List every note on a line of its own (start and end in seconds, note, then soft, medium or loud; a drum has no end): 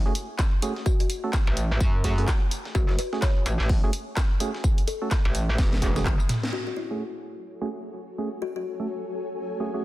0.06 0.13 A3 loud
0.06 0.13 C#4 medium
0.06 0.13 F#4 medium
0.06 0.13 G#4 loud
0.15 open hi-hat loud
0.15 tambourine medium
0.39 kick loud
0.39 snare loud
0.39 clap loud
0.39 tambourine medium
0.62 0.73 A3 medium
0.62 0.73 C#4 medium
0.62 0.73 F#4 medium
0.62 0.73 G#4 medium
0.62 open hi-hat loud
0.62 tambourine medium
0.76 snare soft
0.86 0.95 F#4 medium
0.86 kick loud
0.86 tambourine medium
1.00 1.06 F#4 medium
1.00 open hi-hat medium
1.10 open hi-hat loud
1.10 tambourine medium
1.24 1.31 A3 medium
1.24 1.31 C#4 medium
1.24 1.31 F#4 medium
1.24 1.31 A4 medium
1.33 kick loud
1.33 snare loud
1.33 clap loud
1.33 tambourine medium
1.47 1.79 A1 loud
1.57 open hi-hat loud
1.57 tambourine medium
1.80 2.26 F#2 medium
1.80 kick loud
1.80 tambourine medium
2.04 2.15 A3 medium
2.04 2.15 C#4 medium
2.04 2.15 F#4 medium
2.04 2.15 G#4 loud
2.04 kick medium
2.04 snare soft
2.04 open hi-hat loud
2.04 tambourine medium
2.18 2.31 A3 medium
2.18 2.31 C#4 medium
2.18 2.31 F#4 medium
2.18 2.31 G#4 loud
2.18 closed hi-hat soft
2.28 kick loud
2.28 snare loud
2.28 clap loud
2.28 tambourine medium
2.51 open hi-hat loud
2.51 tambourine medium
2.65 snare medium
2.75 2.97 F#1 loud
2.75 2.84 F#4 medium
2.75 kick loud
2.75 tambourine medium
2.89 2.95 F#4 medium
2.89 snare soft
2.99 3.20 B4 medium
2.99 open hi-hat loud
2.99 tambourine medium
3.13 3.25 A3 medium
3.13 3.25 C#4 medium
3.13 3.25 F#4 medium
3.13 3.25 G#4 medium
3.13 snare soft
3.22 3.38 C#5 medium
3.22 kick loud
3.22 snare loud
3.22 clap loud
3.22 tambourine medium
3.46 3.58 A1 medium
3.46 open hi-hat loud
3.46 tambourine medium
3.60 3.81 A1 medium
3.60 snare soft
3.69 kick loud
3.69 open hi-hat medium
3.84 3.91 A3 loud
3.84 3.91 C#4 medium
3.84 3.91 F#4 medium
3.84 3.91 G#4 loud
3.93 open hi-hat loud
3.93 tambourine medium
4.17 kick loud
4.17 snare loud
4.17 clap loud
4.17 tambourine medium
4.40 4.51 A3 medium
4.40 4.51 C#4 medium
4.40 4.51 F#4 medium
4.40 4.51 G#4 medium
4.40 open hi-hat loud
4.40 tambourine medium
4.54 snare soft
4.64 kick loud
4.64 tambourine medium
4.78 open hi-hat medium
4.87 5.55 A4 medium
4.87 open hi-hat loud
4.87 tambourine medium
5.02 5.09 A3 medium
5.02 5.09 C#4 medium
5.02 5.09 F#4 medium
5.02 5.09 A4 medium
5.11 kick loud
5.11 snare loud
5.11 clap loud
5.11 tambourine medium
5.25 5.57 A1 loud
5.35 open hi-hat loud
5.35 tambourine medium
5.58 6.04 E1 medium
5.58 kick loud
5.58 snare medium
5.58 snare loud
5.58 tambourine medium
5.72 snare medium
5.82 5.93 A3 medium
5.82 5.93 C#4 medium
5.82 5.93 F#4 medium
5.82 5.93 G#4 loud
5.82 kick medium
5.82 open hi-hat loud
5.82 tambourine medium
5.96 6.08 A3 medium
5.96 6.08 C#4 medium
5.96 6.08 F#4 medium
5.96 6.08 G#4 loud
5.96 snare loud
5.96 mid tom medium
5.96 tambourine medium
6.06 6.18 F#1 loud
6.06 kick loud
6.06 clap loud
6.06 mid tom medium
6.20 tambourine medium
6.29 snare loud
6.29 mid tom loud
6.29 open hi-hat loud
6.29 tambourine medium
6.43 snare medium
6.53 6.62 F#4 medium
6.53 9.85 F#4 medium
6.67 6.73 F#4 medium
6.76 7.24 E4 medium
6.91 7.03 A3 medium
6.91 7.03 C#4 medium
6.91 7.03 F#4 medium
6.91 7.03 G#4 medium
6.91 9.85 A4 medium
7.06 9.85 C#5 medium
7.62 7.69 A3 medium
7.62 7.69 C#4 medium
7.62 7.69 F#4 medium
7.62 7.69 G#4 loud
7.69 9.85 G#5 medium
8.18 8.29 A3 medium
8.18 8.29 C#4 medium
8.18 8.29 F#4 medium
8.18 8.29 G#4 medium
8.42 8.51 F#4 medium
8.56 8.62 F#4 medium
8.80 8.87 A3 medium
8.80 8.87 C#4 medium
8.80 8.87 F#4 medium
8.80 8.87 A4 medium
9.60 9.71 A3 medium
9.60 9.71 C#4 medium
9.60 9.71 F#4 medium
9.60 9.71 G#4 medium
9.74 9.85 A3 medium
9.74 9.85 C#4 medium
9.74 9.85 F#4 medium
9.74 9.85 G#4 loud